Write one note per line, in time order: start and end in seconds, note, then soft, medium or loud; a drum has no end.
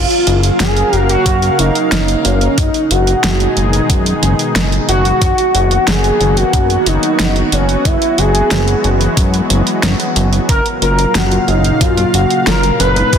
0.00 2.55 C#3 medium
0.00 2.55 F#3 medium
0.00 2.55 A#3 medium
0.00 0.56 F4 loud
0.00 2.55 A#4 medium
0.00 2.55 F5 medium
0.10 closed hi-hat soft
0.27 0.51 F#1 loud
0.27 closed hi-hat medium
0.43 closed hi-hat soft
0.60 0.84 F#1 loud
0.60 1.06 G#4 loud
0.60 snare loud
0.60 closed hi-hat medium
0.77 closed hi-hat soft
0.93 1.17 F#1 medium
0.93 closed hi-hat soft
1.09 1.60 F#4 loud
1.09 closed hi-hat soft
1.26 1.50 F#2 medium
1.26 kick loud
1.26 closed hi-hat loud
1.42 closed hi-hat soft
1.59 1.71 F#1 medium
1.59 2.26 D#4 loud
1.59 closed hi-hat medium
1.75 closed hi-hat soft
1.92 2.16 F#1 medium
1.92 snare loud
1.92 closed hi-hat medium
2.08 closed hi-hat soft
2.25 2.49 F#1 loud
2.25 2.59 C#4 medium
2.25 closed hi-hat medium
2.41 closed hi-hat soft
2.58 2.70 F#1 loud
2.58 5.19 B2 medium
2.58 5.19 D#3 medium
2.58 5.19 G#3 medium
2.58 2.92 D#4 loud
2.58 5.19 D#4 medium
2.58 5.19 G#4 medium
2.58 kick loud
2.58 closed hi-hat medium
2.74 closed hi-hat soft
2.91 3.15 F#1 loud
2.91 3.57 F#4 loud
2.91 closed hi-hat medium
3.07 closed hi-hat soft
3.24 3.48 F#1 loud
3.24 snare loud
3.24 closed hi-hat medium
3.40 closed hi-hat soft
3.57 3.81 F#1 medium
3.57 closed hi-hat soft
3.73 closed hi-hat soft
3.90 4.14 F#2 medium
3.90 kick loud
3.90 closed hi-hat loud
4.06 closed hi-hat soft
4.23 4.35 F#1 medium
4.23 closed hi-hat medium
4.39 closed hi-hat soft
4.56 4.80 F#1 medium
4.56 snare loud
4.56 closed hi-hat medium
4.72 closed hi-hat soft
4.89 5.13 F#1 loud
4.89 5.89 F#4 loud
4.89 closed hi-hat medium
5.05 closed hi-hat soft
5.22 5.34 F#1 loud
5.22 7.83 D#3 medium
5.22 13.09 F#3 medium
5.22 7.83 A#3 medium
5.22 10.45 B3 medium
5.22 10.45 F#4 medium
5.22 kick loud
5.22 closed hi-hat medium
5.38 closed hi-hat soft
5.54 5.78 F#1 loud
5.54 closed hi-hat medium
5.71 closed hi-hat soft
5.87 6.11 F#1 medium
5.87 6.39 G#4 loud
5.87 snare loud
5.87 closed hi-hat medium
6.04 closed hi-hat soft
6.20 6.44 F#1 medium
6.20 closed hi-hat soft
6.37 6.86 F#4 loud
6.37 closed hi-hat soft
6.53 6.77 F#2 medium
6.53 kick loud
6.53 closed hi-hat medium
6.70 closed hi-hat soft
6.86 6.98 F#1 medium
6.86 7.48 D#4 loud
6.86 closed hi-hat medium
7.03 closed hi-hat soft
7.19 7.43 F#1 medium
7.19 snare loud
7.19 closed hi-hat medium
7.36 closed hi-hat soft
7.52 7.76 F#1 loud
7.52 7.87 C#4 medium
7.52 closed hi-hat medium
7.69 closed hi-hat soft
7.85 7.97 F#1 loud
7.85 10.46 E3 medium
7.85 10.46 G#3 medium
7.85 8.20 E4 loud
7.85 kick loud
7.85 closed hi-hat medium
8.02 closed hi-hat soft
8.18 8.42 F#1 loud
8.18 8.84 G#4 loud
8.18 closed hi-hat medium
8.35 closed hi-hat soft
8.51 8.75 F#1 loud
8.51 snare loud
8.51 closed hi-hat medium
8.68 closed hi-hat soft
8.84 9.08 F#1 medium
8.84 closed hi-hat soft
9.01 closed hi-hat soft
9.17 9.41 F#2 medium
9.17 kick loud
9.17 closed hi-hat medium
9.34 closed hi-hat soft
9.50 9.62 F#1 medium
9.50 closed hi-hat medium
9.67 closed hi-hat soft
9.83 9.95 F#1 medium
9.83 snare loud
9.83 closed hi-hat medium
10.00 closed hi-hat soft
10.16 10.40 F#1 medium
10.16 closed hi-hat medium
10.33 closed hi-hat soft
10.49 10.61 F#1 medium
10.49 13.10 A#2 medium
10.49 13.10 C#3 medium
10.49 10.63 A#4 loud
10.49 13.10 F5 medium
10.49 kick loud
10.49 closed hi-hat medium
10.66 closed hi-hat soft
10.82 11.06 F#1 loud
10.82 11.27 F#3 medium
10.82 11.27 A#3 medium
10.82 11.27 F4 medium
10.82 11.16 A#4 loud
10.82 closed hi-hat medium
10.99 closed hi-hat soft
11.15 11.39 F#1 loud
11.15 11.49 F#4 medium
11.15 snare loud
11.15 closed hi-hat medium
11.31 11.58 F#3 medium
11.31 11.58 A#3 medium
11.31 11.58 F4 medium
11.31 closed hi-hat soft
11.48 11.72 F#1 medium
11.48 11.82 D#4 medium
11.48 closed hi-hat soft
11.64 closed hi-hat soft
11.81 12.05 F#2 medium
11.81 12.15 F4 loud
11.81 kick loud
11.81 closed hi-hat medium
11.97 12.43 F#3 medium
11.97 12.43 A#3 medium
11.97 12.43 F4 loud
11.97 closed hi-hat soft
12.14 12.26 F#1 medium
12.14 12.46 F#4 loud
12.14 closed hi-hat medium
12.30 closed hi-hat soft
12.47 12.71 F#1 medium
12.47 12.63 F#3 medium
12.47 12.63 A#3 medium
12.47 12.63 F4 loud
12.47 12.77 A#4 loud
12.47 snare loud
12.47 closed hi-hat medium
12.63 closed hi-hat soft
12.80 13.04 F#1 loud
12.80 13.18 B4 loud
12.80 closed hi-hat medium
12.96 13.18 G#3 medium
12.96 13.18 B3 medium
12.96 13.18 D#4 loud
12.96 closed hi-hat soft
13.13 13.18 F#1 loud
13.13 13.18 B2 medium
13.13 13.18 D#3 medium
13.13 13.18 G#3 medium
13.13 13.18 D#4 medium
13.13 13.18 G#4 medium
13.13 kick loud
13.13 closed hi-hat medium